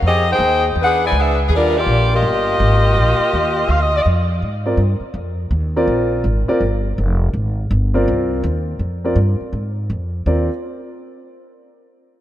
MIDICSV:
0, 0, Header, 1, 5, 480
1, 0, Start_track
1, 0, Key_signature, -3, "major"
1, 0, Tempo, 365408
1, 45, Time_signature, 4, 2, 24, 8
1, 16038, End_track
2, 0, Start_track
2, 0, Title_t, "Saxophone section"
2, 0, Program_c, 0, 65
2, 78, Note_on_c, 0, 68, 92
2, 81, Note_on_c, 0, 60, 88
2, 89, Note_on_c, 0, 67, 98
2, 90, Note_on_c, 0, 75, 108
2, 348, Note_off_c, 0, 68, 0
2, 350, Note_off_c, 0, 60, 0
2, 354, Note_off_c, 0, 67, 0
2, 355, Note_off_c, 0, 75, 0
2, 405, Note_on_c, 0, 63, 99
2, 405, Note_on_c, 0, 79, 118
2, 407, Note_on_c, 0, 72, 98
2, 413, Note_on_c, 0, 68, 101
2, 859, Note_off_c, 0, 63, 0
2, 859, Note_off_c, 0, 79, 0
2, 860, Note_off_c, 0, 72, 0
2, 863, Note_off_c, 0, 68, 0
2, 1078, Note_on_c, 0, 71, 96
2, 1082, Note_on_c, 0, 62, 93
2, 1086, Note_on_c, 0, 68, 101
2, 1089, Note_on_c, 0, 78, 120
2, 1330, Note_off_c, 0, 71, 0
2, 1332, Note_off_c, 0, 62, 0
2, 1334, Note_off_c, 0, 68, 0
2, 1336, Note_off_c, 0, 78, 0
2, 1378, Note_on_c, 0, 74, 89
2, 1382, Note_on_c, 0, 64, 87
2, 1386, Note_on_c, 0, 71, 92
2, 1396, Note_on_c, 0, 80, 104
2, 1509, Note_off_c, 0, 74, 0
2, 1511, Note_off_c, 0, 64, 0
2, 1514, Note_off_c, 0, 71, 0
2, 1519, Note_off_c, 0, 80, 0
2, 1556, Note_on_c, 0, 71, 83
2, 1564, Note_on_c, 0, 76, 95
2, 1566, Note_on_c, 0, 68, 87
2, 1570, Note_on_c, 0, 62, 94
2, 1829, Note_off_c, 0, 71, 0
2, 1833, Note_off_c, 0, 76, 0
2, 1834, Note_off_c, 0, 68, 0
2, 1836, Note_off_c, 0, 62, 0
2, 1951, Note_on_c, 0, 68, 86
2, 1981, Note_off_c, 0, 68, 0
2, 2030, Note_on_c, 0, 65, 87
2, 2031, Note_on_c, 0, 62, 94
2, 2036, Note_on_c, 0, 70, 98
2, 2044, Note_on_c, 0, 55, 96
2, 2306, Note_off_c, 0, 62, 0
2, 2306, Note_off_c, 0, 65, 0
2, 2309, Note_off_c, 0, 70, 0
2, 2313, Note_off_c, 0, 55, 0
2, 2322, Note_on_c, 0, 74, 103
2, 2325, Note_on_c, 0, 58, 94
2, 2325, Note_on_c, 0, 67, 93
2, 2328, Note_on_c, 0, 65, 92
2, 2779, Note_off_c, 0, 74, 0
2, 2781, Note_off_c, 0, 58, 0
2, 2781, Note_off_c, 0, 67, 0
2, 2782, Note_off_c, 0, 65, 0
2, 2799, Note_on_c, 0, 75, 104
2, 2810, Note_on_c, 0, 67, 84
2, 2816, Note_on_c, 0, 58, 93
2, 2816, Note_on_c, 0, 65, 97
2, 4823, Note_off_c, 0, 75, 0
2, 4828, Note_off_c, 0, 67, 0
2, 4831, Note_off_c, 0, 58, 0
2, 4831, Note_off_c, 0, 65, 0
2, 4854, Note_on_c, 0, 77, 75
2, 5003, Note_on_c, 0, 75, 81
2, 5006, Note_off_c, 0, 77, 0
2, 5156, Note_off_c, 0, 75, 0
2, 5196, Note_on_c, 0, 74, 84
2, 5262, Note_on_c, 0, 75, 79
2, 5263, Note_off_c, 0, 74, 0
2, 5340, Note_off_c, 0, 75, 0
2, 16038, End_track
3, 0, Start_track
3, 0, Title_t, "Grand piano"
3, 0, Program_c, 1, 0
3, 6116, Note_on_c, 1, 60, 64
3, 6120, Note_on_c, 1, 65, 62
3, 6127, Note_on_c, 1, 74, 78
3, 6129, Note_on_c, 1, 70, 64
3, 6273, Note_off_c, 1, 60, 0
3, 6274, Note_off_c, 1, 65, 0
3, 6278, Note_off_c, 1, 74, 0
3, 6279, Note_off_c, 1, 70, 0
3, 7571, Note_on_c, 1, 60, 79
3, 7573, Note_on_c, 1, 70, 73
3, 7575, Note_on_c, 1, 65, 79
3, 7580, Note_on_c, 1, 74, 89
3, 8183, Note_off_c, 1, 60, 0
3, 8184, Note_off_c, 1, 65, 0
3, 8184, Note_off_c, 1, 70, 0
3, 8187, Note_off_c, 1, 74, 0
3, 8516, Note_on_c, 1, 65, 75
3, 8517, Note_on_c, 1, 60, 80
3, 8525, Note_on_c, 1, 74, 93
3, 8535, Note_on_c, 1, 70, 74
3, 8672, Note_off_c, 1, 65, 0
3, 8673, Note_off_c, 1, 60, 0
3, 8677, Note_off_c, 1, 74, 0
3, 8682, Note_off_c, 1, 70, 0
3, 10433, Note_on_c, 1, 60, 80
3, 10433, Note_on_c, 1, 65, 68
3, 10440, Note_on_c, 1, 70, 75
3, 10444, Note_on_c, 1, 74, 81
3, 11052, Note_off_c, 1, 60, 0
3, 11053, Note_off_c, 1, 65, 0
3, 11056, Note_off_c, 1, 70, 0
3, 11058, Note_off_c, 1, 74, 0
3, 11882, Note_on_c, 1, 60, 64
3, 11882, Note_on_c, 1, 70, 62
3, 11891, Note_on_c, 1, 65, 62
3, 11895, Note_on_c, 1, 74, 74
3, 12034, Note_off_c, 1, 60, 0
3, 12034, Note_off_c, 1, 70, 0
3, 12038, Note_off_c, 1, 65, 0
3, 12040, Note_off_c, 1, 74, 0
3, 13484, Note_on_c, 1, 60, 63
3, 13488, Note_on_c, 1, 65, 56
3, 13492, Note_on_c, 1, 70, 56
3, 13494, Note_on_c, 1, 74, 72
3, 13761, Note_off_c, 1, 60, 0
3, 13763, Note_off_c, 1, 65, 0
3, 13765, Note_off_c, 1, 70, 0
3, 13766, Note_off_c, 1, 74, 0
3, 16038, End_track
4, 0, Start_track
4, 0, Title_t, "Upright bass"
4, 0, Program_c, 2, 32
4, 32, Note_on_c, 2, 41, 88
4, 499, Note_off_c, 2, 41, 0
4, 507, Note_on_c, 2, 39, 100
4, 982, Note_off_c, 2, 39, 0
4, 994, Note_on_c, 2, 40, 86
4, 1461, Note_off_c, 2, 40, 0
4, 1469, Note_on_c, 2, 37, 98
4, 1944, Note_off_c, 2, 37, 0
4, 1960, Note_on_c, 2, 39, 90
4, 2430, Note_off_c, 2, 39, 0
4, 2446, Note_on_c, 2, 34, 92
4, 2913, Note_off_c, 2, 34, 0
4, 2919, Note_on_c, 2, 31, 90
4, 3390, Note_off_c, 2, 31, 0
4, 3415, Note_on_c, 2, 32, 102
4, 3878, Note_off_c, 2, 32, 0
4, 3895, Note_on_c, 2, 34, 89
4, 4178, Note_off_c, 2, 34, 0
4, 4380, Note_on_c, 2, 39, 93
4, 4837, Note_off_c, 2, 39, 0
4, 4844, Note_on_c, 2, 38, 84
4, 5313, Note_off_c, 2, 38, 0
4, 5330, Note_on_c, 2, 41, 88
4, 5796, Note_off_c, 2, 41, 0
4, 5809, Note_on_c, 2, 44, 78
4, 6262, Note_off_c, 2, 44, 0
4, 6270, Note_on_c, 2, 43, 93
4, 6562, Note_off_c, 2, 43, 0
4, 6750, Note_on_c, 2, 41, 88
4, 7225, Note_off_c, 2, 41, 0
4, 7234, Note_on_c, 2, 39, 94
4, 7708, Note_off_c, 2, 39, 0
4, 7718, Note_on_c, 2, 34, 87
4, 8190, Note_off_c, 2, 34, 0
4, 8196, Note_on_c, 2, 32, 92
4, 8488, Note_off_c, 2, 32, 0
4, 8676, Note_on_c, 2, 31, 84
4, 9148, Note_off_c, 2, 31, 0
4, 9170, Note_on_c, 2, 29, 90
4, 9627, Note_off_c, 2, 29, 0
4, 9635, Note_on_c, 2, 32, 89
4, 10107, Note_off_c, 2, 32, 0
4, 10123, Note_on_c, 2, 31, 101
4, 10591, Note_off_c, 2, 31, 0
4, 10612, Note_on_c, 2, 36, 94
4, 11075, Note_off_c, 2, 36, 0
4, 11082, Note_on_c, 2, 39, 101
4, 11544, Note_off_c, 2, 39, 0
4, 11552, Note_on_c, 2, 41, 81
4, 12020, Note_off_c, 2, 41, 0
4, 12028, Note_on_c, 2, 43, 93
4, 12322, Note_off_c, 2, 43, 0
4, 12515, Note_on_c, 2, 44, 83
4, 12986, Note_off_c, 2, 44, 0
4, 13002, Note_on_c, 2, 41, 90
4, 13469, Note_off_c, 2, 41, 0
4, 13479, Note_on_c, 2, 39, 89
4, 13767, Note_off_c, 2, 39, 0
4, 16038, End_track
5, 0, Start_track
5, 0, Title_t, "Muted upright bass strokes"
5, 4198, Note_on_c, 9, 29, 43
5, 4330, Note_off_c, 9, 29, 0
5, 6569, Note_on_c, 9, 29, 46
5, 6701, Note_off_c, 9, 29, 0
5, 8522, Note_on_c, 9, 29, 45
5, 8653, Note_off_c, 9, 29, 0
5, 12354, Note_on_c, 9, 29, 42
5, 12485, Note_off_c, 9, 29, 0
5, 16038, End_track
0, 0, End_of_file